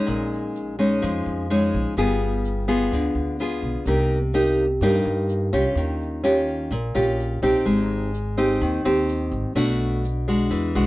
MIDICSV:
0, 0, Header, 1, 4, 480
1, 0, Start_track
1, 0, Tempo, 474308
1, 74, Time_signature, 4, 2, 24, 8
1, 10997, End_track
2, 0, Start_track
2, 0, Title_t, "Nylon-string guitar"
2, 0, Program_c, 0, 24
2, 0, Note_on_c, 0, 56, 61
2, 0, Note_on_c, 0, 61, 66
2, 0, Note_on_c, 0, 63, 70
2, 68, Note_on_c, 0, 46, 59
2, 758, Note_off_c, 0, 56, 0
2, 760, Note_off_c, 0, 61, 0
2, 763, Note_off_c, 0, 63, 0
2, 796, Note_on_c, 0, 56, 55
2, 803, Note_on_c, 0, 61, 52
2, 808, Note_on_c, 0, 63, 62
2, 1008, Note_off_c, 0, 46, 0
2, 1033, Note_on_c, 0, 53, 59
2, 1478, Note_off_c, 0, 56, 0
2, 1481, Note_off_c, 0, 61, 0
2, 1484, Note_off_c, 0, 63, 0
2, 1521, Note_on_c, 0, 56, 58
2, 1527, Note_on_c, 0, 63, 63
2, 1530, Note_on_c, 0, 61, 57
2, 1961, Note_off_c, 0, 56, 0
2, 1962, Note_off_c, 0, 61, 0
2, 1963, Note_off_c, 0, 63, 0
2, 1971, Note_off_c, 0, 53, 0
2, 1998, Note_on_c, 0, 55, 56
2, 2003, Note_on_c, 0, 59, 53
2, 2005, Note_on_c, 0, 65, 53
2, 2008, Note_on_c, 0, 68, 63
2, 2680, Note_off_c, 0, 59, 0
2, 2683, Note_off_c, 0, 65, 0
2, 2684, Note_off_c, 0, 68, 0
2, 2711, Note_on_c, 0, 59, 65
2, 2716, Note_on_c, 0, 65, 58
2, 2718, Note_on_c, 0, 68, 64
2, 2935, Note_off_c, 0, 55, 0
2, 2964, Note_on_c, 0, 50, 59
2, 3396, Note_off_c, 0, 59, 0
2, 3398, Note_off_c, 0, 65, 0
2, 3399, Note_off_c, 0, 68, 0
2, 3442, Note_on_c, 0, 59, 54
2, 3448, Note_on_c, 0, 65, 54
2, 3456, Note_on_c, 0, 68, 63
2, 3882, Note_off_c, 0, 59, 0
2, 3884, Note_off_c, 0, 65, 0
2, 3888, Note_off_c, 0, 68, 0
2, 3897, Note_off_c, 0, 50, 0
2, 3918, Note_on_c, 0, 58, 60
2, 3920, Note_on_c, 0, 48, 57
2, 3927, Note_on_c, 0, 63, 57
2, 3927, Note_on_c, 0, 67, 55
2, 4227, Note_off_c, 0, 58, 0
2, 4230, Note_off_c, 0, 63, 0
2, 4231, Note_off_c, 0, 67, 0
2, 4392, Note_on_c, 0, 58, 53
2, 4398, Note_on_c, 0, 67, 59
2, 4399, Note_on_c, 0, 63, 55
2, 4705, Note_off_c, 0, 58, 0
2, 4706, Note_off_c, 0, 63, 0
2, 4707, Note_off_c, 0, 67, 0
2, 4856, Note_off_c, 0, 48, 0
2, 4880, Note_on_c, 0, 43, 59
2, 4881, Note_on_c, 0, 58, 62
2, 4884, Note_on_c, 0, 63, 58
2, 4887, Note_on_c, 0, 67, 58
2, 5561, Note_off_c, 0, 58, 0
2, 5562, Note_off_c, 0, 63, 0
2, 5564, Note_off_c, 0, 67, 0
2, 5595, Note_on_c, 0, 61, 66
2, 5595, Note_on_c, 0, 65, 59
2, 5604, Note_on_c, 0, 67, 65
2, 5815, Note_off_c, 0, 43, 0
2, 5842, Note_on_c, 0, 51, 54
2, 6278, Note_off_c, 0, 61, 0
2, 6278, Note_off_c, 0, 65, 0
2, 6283, Note_off_c, 0, 67, 0
2, 6310, Note_on_c, 0, 61, 59
2, 6315, Note_on_c, 0, 65, 53
2, 6321, Note_on_c, 0, 67, 61
2, 6776, Note_off_c, 0, 51, 0
2, 6791, Note_off_c, 0, 61, 0
2, 6794, Note_off_c, 0, 65, 0
2, 6797, Note_off_c, 0, 67, 0
2, 6797, Note_on_c, 0, 46, 63
2, 7029, Note_on_c, 0, 61, 56
2, 7034, Note_on_c, 0, 65, 60
2, 7039, Note_on_c, 0, 67, 65
2, 7475, Note_off_c, 0, 61, 0
2, 7478, Note_off_c, 0, 65, 0
2, 7479, Note_off_c, 0, 67, 0
2, 7516, Note_on_c, 0, 63, 61
2, 7517, Note_on_c, 0, 60, 63
2, 7523, Note_on_c, 0, 67, 75
2, 7733, Note_off_c, 0, 46, 0
2, 7748, Note_on_c, 0, 56, 58
2, 8198, Note_off_c, 0, 63, 0
2, 8199, Note_off_c, 0, 60, 0
2, 8202, Note_off_c, 0, 67, 0
2, 8475, Note_on_c, 0, 60, 62
2, 8479, Note_on_c, 0, 63, 58
2, 8484, Note_on_c, 0, 67, 64
2, 8689, Note_off_c, 0, 56, 0
2, 8718, Note_on_c, 0, 51, 60
2, 8918, Note_off_c, 0, 60, 0
2, 8920, Note_off_c, 0, 67, 0
2, 8921, Note_off_c, 0, 63, 0
2, 8957, Note_on_c, 0, 60, 62
2, 8960, Note_on_c, 0, 63, 61
2, 8965, Note_on_c, 0, 67, 69
2, 9638, Note_off_c, 0, 60, 0
2, 9639, Note_off_c, 0, 63, 0
2, 9642, Note_off_c, 0, 67, 0
2, 9653, Note_off_c, 0, 51, 0
2, 9671, Note_on_c, 0, 47, 54
2, 9673, Note_on_c, 0, 57, 58
2, 9675, Note_on_c, 0, 62, 64
2, 9683, Note_on_c, 0, 66, 62
2, 10150, Note_off_c, 0, 57, 0
2, 10154, Note_off_c, 0, 62, 0
2, 10155, Note_off_c, 0, 66, 0
2, 10401, Note_on_c, 0, 56, 54
2, 10405, Note_on_c, 0, 62, 62
2, 10411, Note_on_c, 0, 66, 60
2, 10610, Note_off_c, 0, 47, 0
2, 10632, Note_on_c, 0, 52, 55
2, 10840, Note_off_c, 0, 56, 0
2, 10842, Note_off_c, 0, 62, 0
2, 10844, Note_off_c, 0, 66, 0
2, 10881, Note_on_c, 0, 56, 57
2, 10890, Note_on_c, 0, 62, 55
2, 10892, Note_on_c, 0, 66, 70
2, 10997, Note_off_c, 0, 52, 0
2, 10997, Note_off_c, 0, 56, 0
2, 10997, Note_off_c, 0, 62, 0
2, 10997, Note_off_c, 0, 66, 0
2, 10997, End_track
3, 0, Start_track
3, 0, Title_t, "Upright bass"
3, 0, Program_c, 1, 32
3, 80, Note_on_c, 1, 34, 86
3, 997, Note_off_c, 1, 34, 0
3, 1044, Note_on_c, 1, 41, 98
3, 1263, Note_off_c, 1, 41, 0
3, 1275, Note_on_c, 1, 41, 87
3, 1722, Note_off_c, 1, 41, 0
3, 1760, Note_on_c, 1, 34, 88
3, 1870, Note_off_c, 1, 34, 0
3, 1991, Note_on_c, 1, 31, 85
3, 2914, Note_off_c, 1, 31, 0
3, 2953, Note_on_c, 1, 38, 86
3, 3178, Note_off_c, 1, 38, 0
3, 3186, Note_on_c, 1, 38, 83
3, 3638, Note_off_c, 1, 38, 0
3, 3668, Note_on_c, 1, 35, 80
3, 3784, Note_off_c, 1, 35, 0
3, 3900, Note_on_c, 1, 36, 83
3, 4829, Note_off_c, 1, 36, 0
3, 4866, Note_on_c, 1, 43, 88
3, 5095, Note_off_c, 1, 43, 0
3, 5112, Note_on_c, 1, 43, 91
3, 5561, Note_off_c, 1, 43, 0
3, 5593, Note_on_c, 1, 36, 83
3, 5707, Note_off_c, 1, 36, 0
3, 5821, Note_on_c, 1, 39, 88
3, 6749, Note_off_c, 1, 39, 0
3, 6787, Note_on_c, 1, 34, 91
3, 7015, Note_off_c, 1, 34, 0
3, 7037, Note_on_c, 1, 34, 92
3, 7484, Note_off_c, 1, 34, 0
3, 7511, Note_on_c, 1, 34, 85
3, 7626, Note_off_c, 1, 34, 0
3, 7754, Note_on_c, 1, 32, 88
3, 8675, Note_off_c, 1, 32, 0
3, 8715, Note_on_c, 1, 39, 93
3, 8939, Note_off_c, 1, 39, 0
3, 8958, Note_on_c, 1, 39, 93
3, 9404, Note_off_c, 1, 39, 0
3, 9428, Note_on_c, 1, 32, 83
3, 9544, Note_off_c, 1, 32, 0
3, 9667, Note_on_c, 1, 35, 87
3, 10591, Note_off_c, 1, 35, 0
3, 10634, Note_on_c, 1, 40, 90
3, 10858, Note_off_c, 1, 40, 0
3, 10883, Note_on_c, 1, 35, 88
3, 10997, Note_off_c, 1, 35, 0
3, 10997, End_track
4, 0, Start_track
4, 0, Title_t, "Drums"
4, 81, Note_on_c, 9, 82, 69
4, 182, Note_off_c, 9, 82, 0
4, 332, Note_on_c, 9, 82, 27
4, 433, Note_off_c, 9, 82, 0
4, 564, Note_on_c, 9, 82, 68
4, 666, Note_off_c, 9, 82, 0
4, 819, Note_on_c, 9, 82, 27
4, 920, Note_off_c, 9, 82, 0
4, 1048, Note_on_c, 9, 82, 62
4, 1149, Note_off_c, 9, 82, 0
4, 1285, Note_on_c, 9, 82, 27
4, 1387, Note_off_c, 9, 82, 0
4, 1520, Note_on_c, 9, 82, 68
4, 1621, Note_off_c, 9, 82, 0
4, 1761, Note_on_c, 9, 82, 26
4, 1862, Note_off_c, 9, 82, 0
4, 1993, Note_on_c, 9, 82, 69
4, 2094, Note_off_c, 9, 82, 0
4, 2236, Note_on_c, 9, 82, 27
4, 2337, Note_off_c, 9, 82, 0
4, 2478, Note_on_c, 9, 82, 66
4, 2580, Note_off_c, 9, 82, 0
4, 2722, Note_on_c, 9, 82, 26
4, 2823, Note_off_c, 9, 82, 0
4, 2956, Note_on_c, 9, 82, 66
4, 3057, Note_off_c, 9, 82, 0
4, 3189, Note_on_c, 9, 82, 25
4, 3290, Note_off_c, 9, 82, 0
4, 3435, Note_on_c, 9, 82, 65
4, 3536, Note_off_c, 9, 82, 0
4, 3680, Note_on_c, 9, 82, 27
4, 3781, Note_off_c, 9, 82, 0
4, 3905, Note_on_c, 9, 82, 69
4, 4007, Note_off_c, 9, 82, 0
4, 4149, Note_on_c, 9, 82, 28
4, 4250, Note_off_c, 9, 82, 0
4, 4389, Note_on_c, 9, 82, 66
4, 4490, Note_off_c, 9, 82, 0
4, 4636, Note_on_c, 9, 82, 28
4, 4737, Note_off_c, 9, 82, 0
4, 4876, Note_on_c, 9, 82, 62
4, 4977, Note_off_c, 9, 82, 0
4, 5116, Note_on_c, 9, 82, 28
4, 5217, Note_off_c, 9, 82, 0
4, 5356, Note_on_c, 9, 82, 67
4, 5457, Note_off_c, 9, 82, 0
4, 5606, Note_on_c, 9, 82, 26
4, 5707, Note_off_c, 9, 82, 0
4, 5839, Note_on_c, 9, 82, 69
4, 5940, Note_off_c, 9, 82, 0
4, 6085, Note_on_c, 9, 82, 28
4, 6187, Note_off_c, 9, 82, 0
4, 6319, Note_on_c, 9, 82, 66
4, 6421, Note_off_c, 9, 82, 0
4, 6560, Note_on_c, 9, 82, 28
4, 6661, Note_off_c, 9, 82, 0
4, 6800, Note_on_c, 9, 82, 64
4, 6901, Note_off_c, 9, 82, 0
4, 7047, Note_on_c, 9, 82, 28
4, 7148, Note_off_c, 9, 82, 0
4, 7286, Note_on_c, 9, 82, 65
4, 7387, Note_off_c, 9, 82, 0
4, 7530, Note_on_c, 9, 82, 27
4, 7631, Note_off_c, 9, 82, 0
4, 7758, Note_on_c, 9, 82, 67
4, 7859, Note_off_c, 9, 82, 0
4, 7995, Note_on_c, 9, 82, 29
4, 8096, Note_off_c, 9, 82, 0
4, 8240, Note_on_c, 9, 82, 66
4, 8342, Note_off_c, 9, 82, 0
4, 8483, Note_on_c, 9, 82, 28
4, 8584, Note_off_c, 9, 82, 0
4, 8716, Note_on_c, 9, 82, 65
4, 8817, Note_off_c, 9, 82, 0
4, 8969, Note_on_c, 9, 82, 27
4, 9070, Note_off_c, 9, 82, 0
4, 9199, Note_on_c, 9, 82, 68
4, 9301, Note_off_c, 9, 82, 0
4, 9440, Note_on_c, 9, 82, 27
4, 9541, Note_off_c, 9, 82, 0
4, 9678, Note_on_c, 9, 82, 69
4, 9779, Note_off_c, 9, 82, 0
4, 9926, Note_on_c, 9, 82, 26
4, 10027, Note_off_c, 9, 82, 0
4, 10167, Note_on_c, 9, 82, 65
4, 10269, Note_off_c, 9, 82, 0
4, 10402, Note_on_c, 9, 82, 28
4, 10503, Note_off_c, 9, 82, 0
4, 10638, Note_on_c, 9, 82, 67
4, 10739, Note_off_c, 9, 82, 0
4, 10877, Note_on_c, 9, 82, 26
4, 10978, Note_off_c, 9, 82, 0
4, 10997, End_track
0, 0, End_of_file